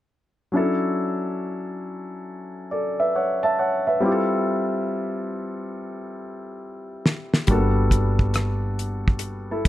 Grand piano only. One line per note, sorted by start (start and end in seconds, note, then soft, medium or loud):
0.52 3.96 F#3 medium
0.52 3.97 C#4 medium
0.52 3.97 D4 medium
0.52 3.98 E4 soft
0.57 2.68 A4 medium
2.71 2.97 A4 soft
2.71 2.97 D5 soft
3.00 3.14 B4 soft
3.00 3.14 E5 medium
3.15 3.41 C#5 soft
3.15 3.41 F#5 soft
3.43 3.58 E5 soft
3.43 3.57 A5 medium
3.59 3.85 C#5 soft
3.59 3.84 F#5 medium
3.87 4.28 B4 soft
3.87 4.27 E5 medium
4.00 7.44 G3 medium
4.00 7.45 C4 medium
4.00 7.45 E4 medium
4.00 7.46 F4 medium
4.05 4.11 G4 soft
4.12 7.50 A4 medium
7.47 9.68 G3 medium
7.47 7.57 A#3 soft
7.47 9.68 D4 medium
7.47 9.20 F#4 medium
7.52 9.68 B3 medium
7.52 9.20 A4 medium
9.51 9.66 E4 soft
9.51 9.66 A4 medium